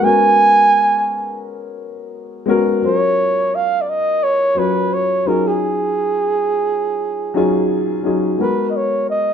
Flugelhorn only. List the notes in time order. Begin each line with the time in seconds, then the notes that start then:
0.04 G#5
2.86 C#5
3.55 F5
3.81 D5
3.89 D#5
4.23 C#5
4.58 B4
4.93 C#5
5.27 A#4
5.47 G#4
8.42 B4
8.70 D#5
8.76 C#5
9.10 D#5